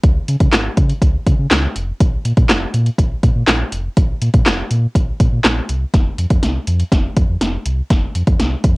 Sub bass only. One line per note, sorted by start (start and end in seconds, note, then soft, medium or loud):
0.04 0.20 C#2 loud
0.28 0.36 C#3 loud
0.40 0.48 C#3 medium
0.53 0.69 G#1 medium
0.77 0.93 C#3 medium
1.02 1.18 C#2 loud
1.27 1.35 C#3 loud
1.39 1.47 C#3 medium
1.51 1.67 C#2 loud
1.76 1.92 F1 loud
2.00 2.16 A#1 loud
2.25 2.33 A#2 medium
2.37 2.45 A#2 loud
2.49 2.65 F1 loud
2.74 2.90 A#2 loud
2.98 3.14 A#1 loud
3.23 3.31 A#2 loud
3.35 3.43 A#2 loud
3.48 3.64 A#1 loud
3.72 3.88 F1 medium
3.97 4.13 A#1 loud
4.21 4.29 A#2 loud
4.34 4.42 A#2 loud
4.46 4.62 F1 medium
4.71 4.87 A#2 medium
4.95 5.11 A#1 loud
5.20 5.28 A#2 loud
5.32 5.40 A#2 loud
5.44 5.60 A#1 loud
5.69 5.85 C2 medium
5.94 6.10 F1 loud
6.18 6.26 F2 loud
6.31 6.39 F2 medium
6.43 6.59 C2 medium
6.67 6.83 F2 loud
6.92 7.08 F1 loud
7.17 7.25 F2 loud
7.29 7.37 F2 medium
7.41 7.57 F1 loud
7.66 7.82 C2 medium
7.90 8.06 F1 loud
8.15 8.23 F2 loud
8.27 8.35 F2 medium
8.39 8.55 C2 medium
8.64 8.77 F2 loud